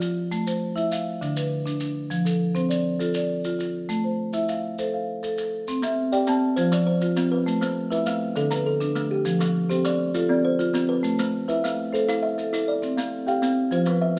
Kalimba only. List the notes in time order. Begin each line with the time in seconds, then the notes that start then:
5.82 C4
6.12 D5
6.27 C4
6.56 C5
6.72 F3
6.87 C5
7.17 C4
7.32 B4
7.61 A3
7.92 B4
8.07 A3
8.37 A4
8.51 D3
8.66 A4
8.95 A3
9.11 G4
9.40 F3
9.70 G4
9.85 F3
10.15 F4
10.29 C4
10.45 C5
10.74 C4
10.89 B4
11.19 A3
11.49 B4
11.64 A3
11.94 A4
12.09 E4
12.23 E5
12.53 E4
12.68 D5
12.98 C4
13.28 F5
13.42 C4
13.72 C5
13.87 F3
14.01 E5